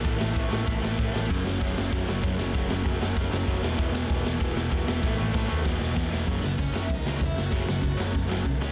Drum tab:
CC |--------|x-------|--------|--------|
HH |o-o-o-o-|--o-o-o-|o-o-o-o-|o-o-o-o-|
SD |-o-o-o-o|-o-o-o-o|-o-o-o-o|-o-o-o-o|
BD |o-o-o-o-|o-o-o-o-|o-o-o-o-|o-o-o-o-|

CC |--------|--------|--------|
HH |--------|o-o-o-o-|o-o-o-o-|
SD |o-o-oooo|-o-o-o-o|-o-o-o-o|
BD |o-o-o-o-|o-o-o-o-|o-o-o-o-|